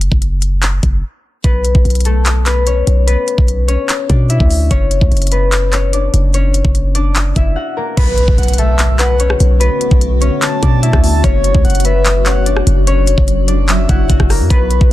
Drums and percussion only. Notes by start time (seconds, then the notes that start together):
0.01 closed hi-hat
0.12 kick
0.22 closed hi-hat
0.42 closed hi-hat
0.63 clap, closed hi-hat
0.83 kick, closed hi-hat
1.44 kick, closed hi-hat
1.65 closed hi-hat
1.75 kick
1.85 closed hi-hat
1.90 closed hi-hat
1.95 closed hi-hat
2.00 closed hi-hat
2.05 closed hi-hat
2.26 clap, closed hi-hat
2.46 clap, closed hi-hat
2.67 closed hi-hat
2.87 closed hi-hat
3.08 closed hi-hat
3.28 closed hi-hat
3.38 kick
3.48 closed hi-hat
3.69 closed hi-hat
3.89 clap, closed hi-hat
4.10 kick, closed hi-hat
4.30 closed hi-hat
4.40 kick
4.50 open hi-hat
4.71 kick, closed hi-hat
4.91 closed hi-hat
5.01 kick
5.12 closed hi-hat
5.17 closed hi-hat
5.22 closed hi-hat
5.27 closed hi-hat
5.32 closed hi-hat
5.52 clap, closed hi-hat
5.73 clap, closed hi-hat
5.93 closed hi-hat
6.14 closed hi-hat
6.34 closed hi-hat
6.54 closed hi-hat
6.65 kick
6.75 closed hi-hat
6.95 closed hi-hat
7.16 clap, closed hi-hat
7.36 kick, closed hi-hat
7.97 kick, closed hi-hat, crash
8.18 closed hi-hat
8.28 kick
8.38 closed hi-hat
8.43 closed hi-hat
8.48 closed hi-hat
8.53 closed hi-hat
8.58 closed hi-hat
8.79 clap, closed hi-hat
8.99 clap, closed hi-hat
9.20 closed hi-hat
9.30 cross-stick
9.40 closed hi-hat
9.61 closed hi-hat
9.81 closed hi-hat
9.91 kick
10.01 closed hi-hat
10.22 closed hi-hat
10.42 clap, closed hi-hat
10.63 kick, closed hi-hat
10.83 closed hi-hat
10.93 kick, cross-stick
11.04 open hi-hat
11.24 kick, closed hi-hat
11.44 closed hi-hat
11.55 kick
11.65 closed hi-hat
11.70 closed hi-hat
11.75 closed hi-hat
11.80 closed hi-hat
11.85 closed hi-hat
12.06 clap, closed hi-hat
12.26 clap, closed hi-hat
12.46 closed hi-hat
12.57 cross-stick
12.67 closed hi-hat
12.87 closed hi-hat
13.07 closed hi-hat
13.18 kick
13.28 closed hi-hat
13.48 closed hi-hat
13.69 clap, closed hi-hat
13.89 kick, closed hi-hat
14.10 kick, closed hi-hat
14.20 kick, cross-stick
14.30 cross-stick, open hi-hat
14.50 kick, closed hi-hat
14.71 closed hi-hat
14.81 kick